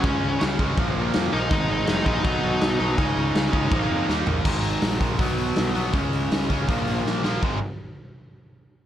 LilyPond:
<<
  \new Staff \with { instrumentName = "Lead electric guitar" } { \time 4/4 \key des \lydian \tempo 4 = 162 <des' des''>4 r2 r8 <ees' ees''>8~ | <ees' ees''>4 <ees' ees''>8 <ees' ees''>2~ <ees' ees''>8~ | <ees' ees''>2. r4 | r1 |
r1 | r1 | }
  \new Staff \with { instrumentName = "Overdriven electric guitar" } { \clef bass \time 4/4 \key des \lydian <des aes des'>4. <des aes des'>8 <bes, f bes>4. <bes, f bes>8 | <aes, ees aes>4. <aes, ees aes>8 <b, fis b>4. <b, fis b>8 | <des aes des'>4. <des aes des'>8 <bes, f bes>4 <ees bes ees'>4 | <aes, ees aes>4. <aes, ees aes>8 <b, fis b>4. <b, fis b>8 |
<des aes des'>4. <des aes des'>8 <bes, f bes>4. <bes, f bes>8 | <aes, ees aes>8 r2. r8 | }
  \new Staff \with { instrumentName = "Picked electric bass" } { \clef bass \time 4/4 \key des \lydian des,8 des,8 des,8 des,8 bes,,8 bes,,8 f,8 bes,,8 | aes,,8 aes,,8 f,,8 bes,,8 b,,8 b,,8 b,,8 b,,8 | des,8 des,8 des,8 des,8 bes,,8 f,8 ees,8 bes,,8 | aes,,4 bes,,4 b,,4 b,,8 b,,8 |
des,8 des,8 des,8 des,8 bes,,8 bes,,8 bes,,4 | aes,,8 r2. r8 | }
  \new DrumStaff \with { instrumentName = "Drums" } \drummode { \time 4/4 <cymc bd>4 <cymc sn>8 bd8 <cymc bd>4 <cymc sn>4 | <cymc bd>4 <cymc sn>8 bd8 <cymc bd>4 <cymc sn>4 | <cymc bd>4 <cymc sn>8 bd8 <cymc bd>4 sn8 tomfh8 | <cymc bd>8 hho8 <hho sn>8 <hho bd>8 <hho bd>8 hho8 <hho sn>8 hho8 |
<hho bd>8 hho8 <hho sn>8 <hho bd>8 <hho bd>8 hho8 sn8 sn8 | bd4 r4 r4 r4 | }
>>